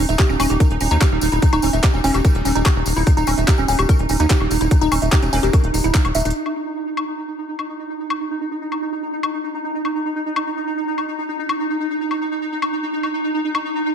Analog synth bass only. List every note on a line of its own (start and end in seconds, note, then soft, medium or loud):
0.09 0.15 D#1 medium
0.29 0.36 D#1 medium
0.40 0.46 D#1 loud
0.50 0.56 D#1 loud
0.71 0.77 D#1 medium
0.81 0.87 D#1 loud
0.91 0.98 D#2 medium
1.12 1.18 D#1 medium
1.22 1.28 D#1 loud
1.32 1.39 D#1 medium
1.53 1.59 D#1 medium
1.63 1.69 D#1 medium
1.73 1.80 D#1 medium
1.94 2.00 E1 medium
2.04 2.11 E1 loud
2.14 2.21 E1 loud
2.35 2.41 D#1 medium
2.45 2.52 D#1 loud
2.55 2.62 D#1 medium
2.76 2.82 D#1 medium
2.86 2.93 D#1 loud
2.97 3.03 D#1 medium
3.17 3.24 D#1 medium
3.27 3.34 D#1 loud
3.38 3.44 D#1 medium
3.58 3.65 D#1 medium
3.68 3.75 D#1 loud
3.79 3.85 D#1 medium
3.99 4.06 D#1 medium
4.10 4.16 D#1 loud
4.20 4.26 D#2 medium
4.40 4.47 D#1 medium
4.51 4.57 D#1 loud
4.61 4.67 D#1 medium
4.81 4.88 D#1 medium
4.92 4.98 D#1 loud
5.02 5.09 D#1 medium
5.23 5.29 E1 medium
5.33 5.39 E1 loud
5.43 5.50 E1 medium
5.64 5.70 D#1 medium
5.74 5.80 D#1 loud
5.84 5.91 D#1 medium
6.05 6.11 D#1 medium
6.15 6.22 D#1 loud
6.25 6.32 D#1 medium